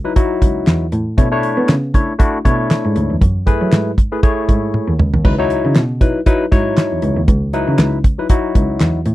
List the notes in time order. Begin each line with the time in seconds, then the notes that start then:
0.04 F#3 D#4 E4 B4
0.15 F#3 D#4 E4 F#4, kick, closed hi-hat
0.42 C#2, kick, closed hi-hat
0.67 E2, snare, clap, closed hi-hat
0.92 A2, closed hi-hat
1.17 B2 A3 D4 E4 C#5, kick, closed hi-hat
1.31 A3 D4 E4 C#5
1.43 closed hi-hat
1.57 B3
1.69 C#3, snare, clap, closed hi-hat
1.94 A3 D4 E4 C#5, kick, closed hi-hat
2.19 A3 D4 E4 F#4, kick, closed hi-hat
2.45 B2 A3 D4 E4 C#5, kick, closed hi-hat
2.71 snare, clap, closed hi-hat
2.84 G#2
2.96 D2, closed hi-hat
3.10 E2
3.21 F#2, kick, closed hi-hat
3.46 A3 E4 G#4 B4, kick, closed hi-hat
3.61 F#3
3.72 G#2, snare, clap, closed hi-hat
3.98 kick, closed hi-hat
4.12 A3 E4 G#4 B4
4.23 A3 E4 G#4 C#5, kick, closed hi-hat
4.49 G#2, kick, closed hi-hat
4.74 high tom
4.88 D#2
4.99 C#2, mid tom
5.14 D#2, floor tom
5.24 C#2 F#3 D#4 E4 B4, kick, splash
5.39 F#3 D#4 E4 C#5
5.50 closed hi-hat
5.65 C#3
5.75 B2, snare, clap, closed hi-hat
6.01 F#3 D#4 E4 B4, kick, closed hi-hat
6.26 F#3 D#4 E4 B4, kick, closed hi-hat
6.51 G#2 F#3 D#4 E4 C#5, kick, closed hi-hat
6.77 snare, clap, closed hi-hat
6.91 E2
7.02 C#2, closed hi-hat
7.17 D#2
7.28 C#2, kick, closed hi-hat
7.53 F#3 D#4 E4 B4, closed hi-hat
7.67 C#3
7.78 C#2, snare, clap, closed hi-hat
8.04 kick, closed hi-hat
8.18 F#3 D#4 E4 B4
8.29 F#3 D#4 E4 F#4, kick, closed hi-hat
8.55 C#2, kick, closed hi-hat
8.80 E2, snare, clap, closed hi-hat
9.06 A2, closed hi-hat